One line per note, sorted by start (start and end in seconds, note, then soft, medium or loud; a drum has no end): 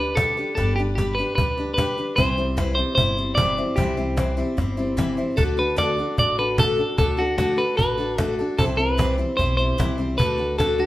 0.00 0.40 D2 medium
0.00 0.16 D4 soft
0.00 0.17 G4 soft
0.00 0.15 B4 medium
0.00 0.17 B4 soft
0.15 0.37 G3 medium
0.15 0.37 D4 medium
0.15 0.37 G4 medium
0.15 0.53 A4 medium
0.15 0.36 B4 medium
0.15 cajon bass medium
0.15 cajon slap loud
0.37 0.56 D4 soft
0.37 0.57 G4 soft
0.37 0.57 B4 soft
0.37 cajon slap soft
0.55 1.20 G1 medium
0.55 0.77 G3 medium
0.55 0.77 D4 medium
0.55 0.78 G4 medium
0.55 0.75 A4 medium
0.55 0.76 B4 medium
0.55 cajon bass medium
0.55 cajon slap soft
0.76 0.81 G4 medium
0.76 0.97 G4 soft
0.76 0.97 B4 soft
0.80 0.97 D4 soft
0.89 cajon slap soft
0.95 1.18 G3 medium
0.95 1.18 D4 medium
0.95 1.15 G4 medium
0.95 1.18 G4 medium
0.95 1.17 B4 medium
0.95 cajon bass medium
0.95 cajon slap medium
1.15 1.34 B4 medium
1.15 1.38 B4 medium
1.19 1.38 D4 soft
1.19 1.38 G4 soft
1.35 2.00 D2 medium
1.35 1.58 G3 medium
1.35 1.58 D4 soft
1.35 1.73 B4 medium
1.35 cajon bass loud
1.35 cajon slap soft
1.40 1.57 G4 medium
1.40 1.56 B4 medium
1.57 1.76 D4 soft
1.57 1.77 G4 soft
1.57 1.77 B4 soft
1.57 cajon slap soft
1.74 1.97 G3 medium
1.74 1.98 D4 medium
1.74 2.16 B4 medium
1.74 cajon bass medium
1.78 1.97 G4 medium
1.78 1.96 B4 medium
1.78 cajon slap loud
1.98 2.17 D4 soft
1.98 2.18 G4 soft
1.98 2.18 B4 soft
1.98 cajon slap soft
2.16 2.81 C2 medium
2.16 2.37 C3 medium
2.16 2.37 E3 medium
2.16 2.38 G3 medium
2.16 2.38 C4 medium
2.16 2.37 E4 medium
2.16 2.61 C5 medium
2.16 2.36 C5 medium
2.16 cajon bass loud
2.16 cajon slap soft
2.38 2.56 G3 soft
2.38 2.56 C4 soft
2.38 2.57 E4 soft
2.38 2.57 C5 soft
2.38 cajon slap soft
2.57 2.77 C3 medium
2.57 2.77 E3 medium
2.57 2.77 G3 medium
2.57 2.77 C4 medium
2.57 2.76 E4 medium
2.57 2.76 C5 medium
2.57 cajon bass medium
2.57 cajon slap loud
2.61 2.74 B4 medium
2.75 2.96 C4 soft
2.75 2.97 E4 soft
2.75 2.94 C5 medium
2.75 2.97 C5 soft
2.75 cajon slap soft
2.79 2.96 G3 soft
2.95 3.60 G1 medium
2.95 3.17 G3 medium
2.95 3.17 C4 medium
2.95 3.17 E4 medium
2.95 3.35 C5 loud
2.95 3.16 C5 medium
2.95 cajon bass loud
2.95 cajon slap soft
3.17 3.37 G3 soft
3.17 3.37 C4 soft
3.17 3.37 E4 soft
3.17 3.38 C5 soft
3.17 cajon slap soft
3.35 3.58 C3 medium
3.35 3.58 E3 medium
3.35 3.58 G3 medium
3.35 3.57 C4 medium
3.35 3.57 E4 medium
3.35 3.78 D5 loud
3.35 cajon bass medium
3.35 cajon slap loud
3.39 3.56 C5 medium
3.57 3.76 G3 soft
3.57 3.77 C4 soft
3.57 3.77 E4 soft
3.57 3.77 C5 soft
3.57 cajon slap soft
3.76 4.40 C2 medium
3.76 3.97 C3 medium
3.76 3.98 E3 medium
3.76 3.98 G3 medium
3.76 3.97 C4 medium
3.76 3.96 E4 medium
3.76 4.53 G4 medium
3.76 3.96 C5 medium
3.76 cajon bass loud
3.76 cajon slap soft
3.97 4.16 G3 soft
3.97 4.16 C4 soft
3.97 4.17 E4 soft
3.97 4.17 C5 soft
3.97 cajon slap soft
4.17 4.37 C3 medium
4.17 4.38 E3 medium
4.17 4.38 G3 medium
4.17 4.37 C4 medium
4.17 4.36 E4 medium
4.17 4.36 C5 medium
4.17 cajon bass medium
4.17 cajon slap medium
4.37 4.56 G3 soft
4.37 4.57 C4 soft
4.37 4.57 E4 medium
4.37 4.58 C5 medium
4.37 cajon slap soft
4.57 5.20 G1 medium
4.57 4.78 G3 medium
4.57 4.77 C4 medium
4.57 4.76 E4 medium
4.57 4.76 C5 medium
4.57 cajon bass loud
4.57 cajon slap soft
4.77 4.96 G3 soft
4.77 4.96 C4 soft
4.77 4.97 E4 soft
4.77 4.97 C5 medium
4.77 cajon slap soft
4.97 5.18 C3 medium
4.97 5.18 E3 medium
4.97 5.18 G3 medium
4.97 5.17 C4 medium
4.97 5.17 E4 medium
4.97 5.16 C5 medium
4.97 cajon bass medium
4.97 cajon slap loud
5.17 5.36 G3 soft
5.17 5.37 C4 soft
5.17 5.37 E4 soft
5.17 5.38 C5 soft
5.17 cajon slap soft
5.37 6.01 D2 medium
5.37 5.58 D3 medium
5.37 5.58 A3 medium
5.37 5.58 D4 medium
5.37 5.57 F#4 medium
5.37 5.43 A4 medium
5.37 5.56 A4 medium
5.37 cajon bass medium
5.37 cajon slap soft
5.57 5.76 D4 soft
5.57 5.76 F#4 soft
5.57 5.77 A4 soft
5.57 5.78 B4 medium
5.76 5.97 D3 medium
5.76 5.97 A3 medium
5.76 5.98 D4 medium
5.76 5.98 F#4 medium
5.76 5.96 A4 medium
5.76 6.16 D5 loud
5.76 cajon bass medium
5.76 cajon slap loud
5.97 6.17 D4 soft
5.97 6.18 F#4 soft
5.97 6.18 A4 soft
5.97 cajon slap soft
6.17 6.81 A1 medium
6.17 6.38 A3 soft
6.17 6.38 D4 medium
6.17 6.38 F#4 medium
6.17 6.37 A4 medium
6.17 6.37 D5 loud
6.17 cajon bass medium
6.17 cajon slap soft
6.38 6.58 D4 soft
6.38 6.58 F#4 soft
6.38 6.58 A4 soft
6.38 6.59 B4 medium
6.38 cajon slap soft
6.58 6.78 D3 medium
6.58 6.78 A3 medium
6.58 6.78 D4 medium
6.58 6.78 F#4 medium
6.58 6.97 A4 medium
6.58 6.76 A4 medium
6.58 cajon bass medium
6.58 cajon slap loud
6.78 6.97 D4 soft
6.78 6.97 F#4 soft
6.78 6.98 A4 soft
6.78 cajon slap soft
6.98 7.61 D2 medium
6.98 7.18 D3 medium
6.98 7.18 A3 medium
6.98 7.19 D4 medium
6.98 7.17 F#4 medium
6.98 7.19 A4 medium
6.98 7.16 A4 medium
6.98 cajon bass loud
6.98 cajon slap soft
7.17 7.37 D4 soft
7.17 7.37 F#4 medium
7.17 7.38 F#4 soft
7.17 7.38 A4 medium
7.38 7.58 D3 medium
7.38 7.59 A3 medium
7.38 7.58 D4 medium
7.38 7.59 F#4 medium
7.38 7.57 F#4 medium
7.38 7.56 A4 medium
7.38 cajon bass medium
7.38 cajon slap medium
7.57 7.77 D4 soft
7.57 7.78 F#4 soft
7.57 7.78 A4 soft
7.57 7.76 B4 medium
7.57 cajon slap soft
7.77 8.41 A1 medium
7.77 7.98 A3 soft
7.77 7.98 D4 medium
7.77 7.98 F#4 medium
7.77 7.96 A4 medium
7.77 8.21 B4 medium
7.77 cajon bass medium
7.77 cajon slap soft
7.98 8.18 D4 soft
7.98 8.18 F#4 soft
7.98 8.18 A4 soft
7.98 cajon slap soft
8.18 8.38 D3 medium
8.18 8.39 A3 medium
8.18 8.39 D4 medium
8.18 8.39 F#4 medium
8.18 8.38 A4 medium
8.18 8.34 A4 medium
8.18 cajon bass medium
8.18 cajon slap loud
8.39 8.58 D4 soft
8.39 8.59 F#4 soft
8.39 8.59 A4 medium
8.39 cajon slap soft
8.58 9.21 C2 medium
8.58 8.78 C3 medium
8.58 8.79 E3 medium
8.58 8.79 G3 medium
8.58 8.78 C4 medium
8.58 8.78 E4 medium
8.58 8.64 A4 medium
8.58 8.77 C5 medium
8.58 cajon bass loud
8.58 cajon slap soft
8.77 8.97 G3 soft
8.77 8.97 C4 soft
8.77 8.98 E4 soft
8.77 9.15 B4 medium
8.77 8.98 C5 medium
8.77 cajon slap soft
8.97 9.18 C3 medium
8.97 9.18 E3 medium
8.97 9.18 G3 medium
8.97 9.18 C4 medium
8.97 9.17 E4 medium
8.97 9.16 C5 medium
8.97 cajon bass medium
8.97 cajon slap loud
9.18 9.37 G3 soft
9.18 9.37 C4 soft
9.18 9.38 E4 soft
9.18 9.38 C5 soft
9.18 cajon slap soft
9.37 9.73 B1 medium
9.37 9.58 G3 medium
9.37 9.59 C4 medium
9.37 9.58 E4 medium
9.37 9.56 C5 medium
9.37 9.57 C5 medium
9.37 cajon bass loud
9.37 cajon slap soft
9.57 9.77 G3 soft
9.57 9.77 C4 soft
9.57 9.78 E4 soft
9.57 10.17 C5 medium
9.57 9.78 C5 medium
9.78 10.13 C2 medium
9.78 9.98 C3 medium
9.78 9.99 E3 medium
9.78 9.98 G3 medium
9.78 9.98 C4 medium
9.78 9.98 E4 medium
9.78 9.97 C5 medium
9.78 cajon bass medium
9.78 cajon slap loud
9.98 10.18 G3 soft
9.98 10.18 C4 soft
9.98 10.18 E4 soft
9.98 10.18 C5 soft
9.98 cajon slap soft
10.18 10.82 D2 medium
10.18 10.38 D3 medium
10.18 10.39 A3 medium
10.18 10.38 D4 medium
10.18 10.38 F#4 medium
10.18 10.36 A4 medium
10.18 10.58 B4 medium
10.18 cajon bass loud
10.18 cajon slap soft
10.38 10.58 D4 soft
10.38 10.58 F#4 soft
10.38 10.58 A4 medium
10.58 10.79 D3 medium
10.58 10.79 A3 medium
10.58 10.79 D4 medium
10.58 10.78 F#4 medium
10.58 10.79 A4 medium
10.58 10.77 A4 medium
10.58 cajon bass medium
10.58 cajon slap loud
10.78 10.86 D4 soft
10.78 10.86 F#4 soft
10.78 10.86 G4 medium
10.78 10.86 A4 soft
10.78 cajon slap soft